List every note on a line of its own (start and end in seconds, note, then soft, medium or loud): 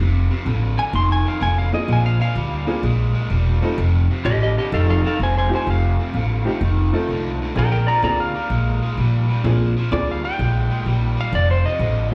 0.00 0.28 F1 medium
0.00 0.27 F2 medium
0.00 0.28 C3 medium
0.30 0.45 F2 medium
0.30 0.45 C3 medium
0.46 0.75 A1 medium
0.46 0.75 F2 medium
0.46 0.75 D3 medium
0.77 0.92 F2 medium
0.77 0.92 D3 medium
0.77 0.94 G#5 medium
0.93 1.22 F1 medium
0.93 1.22 F2 medium
0.93 1.22 D#3 medium
0.93 1.10 C6 medium
1.12 1.26 G#5 medium
1.25 1.38 F2 medium
1.25 1.39 D#3 medium
1.25 1.42 F5 medium
1.39 1.70 F1 medium
1.39 1.69 F2 medium
1.39 1.69 D3 medium
1.39 1.57 G#5 medium
1.58 1.73 F5 medium
1.72 1.86 F2 medium
1.72 1.87 D3 medium
1.72 2.32 A#3 medium
1.72 2.32 C4 medium
1.72 2.33 D4 medium
1.72 2.33 F4 medium
1.72 2.33 G#4 medium
1.72 1.89 D#5 medium
1.87 2.17 A#1 medium
1.87 2.17 A#2 medium
1.87 2.17 F3 medium
1.93 2.05 G#5 medium
2.06 2.20 F5 medium
2.20 2.33 A#2 medium
2.20 2.34 F3 medium
2.20 2.67 F5 medium
2.34 2.64 D2 medium
2.34 2.64 A#2 medium
2.34 2.64 G3 medium
2.67 2.81 A#2 medium
2.67 2.81 G3 medium
2.67 2.81 A#3 medium
2.67 2.81 C4 medium
2.67 2.81 D4 medium
2.67 2.81 F4 medium
2.67 2.82 G#4 medium
2.82 3.12 A#1 medium
2.82 3.11 A#2 medium
2.82 3.12 G#3 medium
3.13 3.28 A#2 medium
3.13 3.28 G#3 medium
3.30 3.59 E1 medium
3.30 3.59 A#2 medium
3.30 3.59 G3 medium
3.62 3.76 A#2 medium
3.62 3.76 G3 medium
3.62 3.76 A3 medium
3.62 3.76 C4 medium
3.62 3.76 D#4 medium
3.62 3.76 F4 medium
3.62 3.76 A4 medium
3.78 4.06 F1 medium
3.78 4.06 F2 medium
3.78 4.07 C3 medium
4.10 4.24 F2 medium
4.10 4.24 C3 medium
4.25 4.54 A1 medium
4.25 4.54 F2 medium
4.25 4.54 D3 loud
4.25 4.41 G4 medium
4.25 4.41 D#5 medium
4.42 4.56 G4 medium
4.42 4.57 D#5 medium
4.57 4.71 F2 medium
4.57 4.71 D3 medium
4.57 4.72 G4 medium
4.57 4.73 D#5 medium
4.72 5.01 F1 medium
4.72 5.01 F2 medium
4.72 5.01 D#3 medium
4.72 4.88 A4 medium
4.72 4.88 F5 medium
4.89 5.03 A4 medium
4.89 5.04 F5 medium
5.04 5.18 F2 medium
5.04 5.18 D#3 medium
5.04 5.20 A4 medium
5.04 5.21 F5 medium
5.19 5.48 F1 medium
5.19 5.48 F2 medium
5.19 5.48 D3 medium
5.19 5.36 C5 medium
5.23 5.36 G#5 medium
5.38 5.51 C5 medium
5.38 5.52 G#5 medium
5.49 5.65 F2 medium
5.49 5.66 D3 medium
5.49 6.10 A3 medium
5.49 6.10 C4 medium
5.49 6.10 D#4 medium
5.49 6.10 F4 medium
5.49 6.10 G4 medium
5.55 5.68 C5 medium
5.55 5.68 G#5 medium
5.67 5.96 F1 medium
5.67 5.95 F2 medium
5.67 5.96 C3 medium
5.67 6.60 F5 medium
5.99 6.13 F2 medium
5.99 6.13 C3 medium
6.14 6.42 A1 medium
6.14 6.43 F2 medium
6.14 6.43 D3 medium
6.45 6.60 F2 medium
6.45 6.60 D3 medium
6.45 6.59 A3 medium
6.45 6.59 C4 medium
6.45 6.59 D#4 medium
6.45 6.59 F4 medium
6.45 6.59 G4 medium
6.61 6.90 F1 medium
6.61 6.90 F2 medium
6.61 6.90 D#3 medium
6.93 7.07 F2 medium
6.93 7.07 D#3 medium
6.93 7.52 A3 medium
6.93 7.52 C4 medium
6.93 7.52 D#4 medium
6.93 7.52 F4 medium
6.93 7.53 A4 medium
7.08 7.37 C2 medium
7.08 7.37 F2 medium
7.08 7.37 D3 medium
7.41 7.54 F2 medium
7.41 7.55 D3 medium
7.55 7.84 A#1 medium
7.55 7.84 A#2 medium
7.55 7.85 F3 medium
7.55 7.84 A#3 medium
7.55 7.84 C4 medium
7.55 7.84 D4 medium
7.55 7.84 F4 medium
7.55 7.84 G#4 medium
7.55 7.71 A#4 medium
7.55 7.71 G5 medium
7.72 7.86 A#4 medium
7.72 7.87 G5 medium
7.87 8.01 A#2 medium
7.87 8.02 F3 medium
7.87 8.03 D5 medium
7.87 8.03 A#5 medium
8.02 8.31 D2 medium
8.02 8.31 A#2 medium
8.02 8.31 G3 medium
8.02 8.32 A#3 medium
8.02 8.32 C4 medium
8.02 8.32 D4 medium
8.02 8.32 F4 medium
8.02 8.32 G#4 medium
8.02 8.18 D5 medium
8.02 8.19 A#5 medium
8.20 9.57 F5 loud
8.34 8.48 A#2 medium
8.34 8.49 G3 medium
8.50 8.79 A#1 medium
8.50 8.79 A#2 medium
8.50 8.79 G#3 medium
8.82 8.96 A#2 medium
8.82 8.96 G#3 medium
8.97 9.26 A#1 medium
8.97 9.26 A#2 medium
8.97 9.26 G3 medium
9.28 9.42 A#2 medium
9.28 9.43 G3 medium
9.43 9.73 A#1 medium
9.43 9.72 A#2 medium
9.43 9.73 F3 medium
9.43 9.73 A#3 medium
9.43 9.73 C4 medium
9.43 9.73 D4 medium
9.43 9.73 F4 medium
9.43 9.73 G#4 medium
9.77 9.90 A#2 medium
9.77 9.91 F3 medium
9.91 10.20 D2 medium
9.91 10.20 A#2 medium
9.91 10.21 G3 medium
9.91 10.20 A#3 medium
9.91 10.20 C4 medium
9.91 10.20 D4 medium
9.91 10.20 F4 medium
9.91 10.21 G#4 medium
9.91 10.08 D5 loud
10.11 10.25 F5 medium
10.23 10.37 A#2 medium
10.23 10.38 G3 medium
10.23 11.16 G5 loud
10.38 10.68 A#1 medium
10.38 10.67 A#2 medium
10.38 10.67 G#3 medium
10.70 10.84 A#2 medium
10.70 10.84 G#3 medium
10.86 11.15 A#1 medium
10.86 11.15 A#2 medium
10.86 11.15 G3 loud
11.17 11.31 A#2 medium
11.17 11.31 G3 medium
11.17 11.34 F5 medium
11.32 11.61 F1 medium
11.32 11.62 F2 medium
11.32 11.62 C3 medium
11.32 11.49 D5 medium
11.51 11.65 C5 medium
11.64 11.78 F2 medium
11.64 11.79 C3 medium
11.64 12.14 D#5 medium
11.79 12.08 A1 medium
11.79 12.09 F2 medium
11.79 12.09 D3 medium